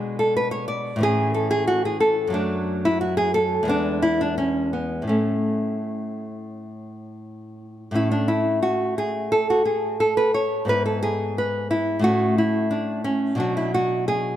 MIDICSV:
0, 0, Header, 1, 2, 480
1, 0, Start_track
1, 0, Key_signature, 3, "major"
1, 0, Tempo, 665188
1, 1694, Time_signature, 4, 2, 24, 8
1, 2660, Tempo, 714286
1, 5540, Tempo, 679502
1, 10055, End_track
2, 0, Start_track
2, 0, Title_t, "Nylon-string guitar"
2, 0, Program_c, 0, 24
2, 0, Note_on_c, 0, 47, 42
2, 0, Note_on_c, 0, 56, 39
2, 0, Note_on_c, 0, 62, 43
2, 0, Note_on_c, 0, 68, 56
2, 126, Note_off_c, 0, 68, 0
2, 137, Note_on_c, 0, 69, 73
2, 258, Note_off_c, 0, 69, 0
2, 264, Note_on_c, 0, 71, 76
2, 367, Note_off_c, 0, 71, 0
2, 370, Note_on_c, 0, 73, 75
2, 486, Note_off_c, 0, 73, 0
2, 489, Note_on_c, 0, 74, 77
2, 683, Note_off_c, 0, 47, 0
2, 691, Note_off_c, 0, 56, 0
2, 692, Note_on_c, 0, 45, 60
2, 700, Note_off_c, 0, 62, 0
2, 711, Note_on_c, 0, 52, 51
2, 723, Note_off_c, 0, 74, 0
2, 726, Note_on_c, 0, 61, 51
2, 744, Note_on_c, 0, 68, 91
2, 967, Note_off_c, 0, 68, 0
2, 970, Note_on_c, 0, 69, 66
2, 1084, Note_off_c, 0, 69, 0
2, 1087, Note_on_c, 0, 68, 88
2, 1206, Note_off_c, 0, 68, 0
2, 1209, Note_on_c, 0, 66, 82
2, 1332, Note_off_c, 0, 66, 0
2, 1337, Note_on_c, 0, 68, 68
2, 1443, Note_off_c, 0, 68, 0
2, 1446, Note_on_c, 0, 69, 80
2, 1641, Note_on_c, 0, 42, 58
2, 1643, Note_off_c, 0, 45, 0
2, 1653, Note_off_c, 0, 52, 0
2, 1660, Note_off_c, 0, 61, 0
2, 1660, Note_on_c, 0, 54, 52
2, 1678, Note_on_c, 0, 57, 44
2, 1680, Note_off_c, 0, 69, 0
2, 1688, Note_on_c, 0, 62, 82
2, 2038, Note_off_c, 0, 62, 0
2, 2057, Note_on_c, 0, 64, 87
2, 2168, Note_off_c, 0, 64, 0
2, 2171, Note_on_c, 0, 66, 80
2, 2285, Note_off_c, 0, 66, 0
2, 2288, Note_on_c, 0, 68, 84
2, 2409, Note_off_c, 0, 68, 0
2, 2412, Note_on_c, 0, 69, 89
2, 2605, Note_off_c, 0, 42, 0
2, 2614, Note_off_c, 0, 54, 0
2, 2618, Note_on_c, 0, 40, 66
2, 2623, Note_off_c, 0, 57, 0
2, 2635, Note_on_c, 0, 56, 57
2, 2648, Note_off_c, 0, 69, 0
2, 2654, Note_on_c, 0, 59, 56
2, 2665, Note_on_c, 0, 62, 98
2, 2885, Note_off_c, 0, 62, 0
2, 2887, Note_on_c, 0, 64, 79
2, 3007, Note_off_c, 0, 64, 0
2, 3011, Note_on_c, 0, 62, 79
2, 3121, Note_off_c, 0, 62, 0
2, 3124, Note_on_c, 0, 61, 71
2, 3354, Note_off_c, 0, 59, 0
2, 3354, Note_off_c, 0, 61, 0
2, 3362, Note_on_c, 0, 59, 52
2, 3557, Note_on_c, 0, 45, 47
2, 3561, Note_off_c, 0, 40, 0
2, 3569, Note_off_c, 0, 56, 0
2, 3590, Note_off_c, 0, 59, 0
2, 3593, Note_on_c, 0, 61, 39
2, 3604, Note_on_c, 0, 57, 57
2, 5275, Note_off_c, 0, 57, 0
2, 5486, Note_off_c, 0, 45, 0
2, 5499, Note_on_c, 0, 45, 50
2, 5504, Note_off_c, 0, 61, 0
2, 5507, Note_on_c, 0, 57, 41
2, 5520, Note_on_c, 0, 61, 41
2, 5528, Note_on_c, 0, 64, 72
2, 5638, Note_off_c, 0, 64, 0
2, 5641, Note_on_c, 0, 62, 67
2, 5758, Note_on_c, 0, 64, 65
2, 5770, Note_off_c, 0, 62, 0
2, 5999, Note_off_c, 0, 64, 0
2, 6002, Note_on_c, 0, 66, 73
2, 6240, Note_off_c, 0, 66, 0
2, 6252, Note_on_c, 0, 68, 76
2, 6486, Note_off_c, 0, 68, 0
2, 6491, Note_on_c, 0, 69, 87
2, 6616, Note_off_c, 0, 69, 0
2, 6619, Note_on_c, 0, 66, 66
2, 6726, Note_off_c, 0, 66, 0
2, 6728, Note_on_c, 0, 68, 58
2, 6969, Note_off_c, 0, 68, 0
2, 6974, Note_on_c, 0, 69, 76
2, 7090, Note_off_c, 0, 69, 0
2, 7093, Note_on_c, 0, 71, 73
2, 7213, Note_off_c, 0, 71, 0
2, 7216, Note_on_c, 0, 73, 77
2, 7424, Note_off_c, 0, 45, 0
2, 7428, Note_off_c, 0, 57, 0
2, 7431, Note_on_c, 0, 44, 54
2, 7435, Note_off_c, 0, 61, 0
2, 7441, Note_on_c, 0, 59, 44
2, 7453, Note_on_c, 0, 64, 43
2, 7456, Note_off_c, 0, 73, 0
2, 7461, Note_on_c, 0, 71, 81
2, 7575, Note_off_c, 0, 71, 0
2, 7577, Note_on_c, 0, 69, 69
2, 7694, Note_off_c, 0, 69, 0
2, 7697, Note_on_c, 0, 68, 85
2, 7935, Note_off_c, 0, 68, 0
2, 7949, Note_on_c, 0, 71, 75
2, 8169, Note_off_c, 0, 64, 0
2, 8175, Note_off_c, 0, 71, 0
2, 8178, Note_on_c, 0, 64, 74
2, 8380, Note_off_c, 0, 44, 0
2, 8382, Note_on_c, 0, 45, 65
2, 8385, Note_off_c, 0, 59, 0
2, 8395, Note_on_c, 0, 57, 48
2, 8402, Note_on_c, 0, 61, 49
2, 8410, Note_off_c, 0, 64, 0
2, 8412, Note_on_c, 0, 66, 91
2, 8648, Note_off_c, 0, 66, 0
2, 8656, Note_on_c, 0, 64, 71
2, 8884, Note_on_c, 0, 62, 78
2, 8891, Note_off_c, 0, 64, 0
2, 9114, Note_off_c, 0, 61, 0
2, 9120, Note_off_c, 0, 62, 0
2, 9123, Note_on_c, 0, 61, 71
2, 9331, Note_off_c, 0, 45, 0
2, 9338, Note_off_c, 0, 57, 0
2, 9340, Note_on_c, 0, 47, 59
2, 9352, Note_on_c, 0, 54, 44
2, 9355, Note_off_c, 0, 61, 0
2, 9358, Note_on_c, 0, 62, 42
2, 9373, Note_on_c, 0, 66, 79
2, 9490, Note_off_c, 0, 66, 0
2, 9493, Note_on_c, 0, 64, 73
2, 9615, Note_off_c, 0, 64, 0
2, 9618, Note_on_c, 0, 66, 84
2, 9847, Note_off_c, 0, 66, 0
2, 9854, Note_on_c, 0, 68, 83
2, 10055, Note_off_c, 0, 47, 0
2, 10055, Note_off_c, 0, 54, 0
2, 10055, Note_off_c, 0, 62, 0
2, 10055, Note_off_c, 0, 68, 0
2, 10055, End_track
0, 0, End_of_file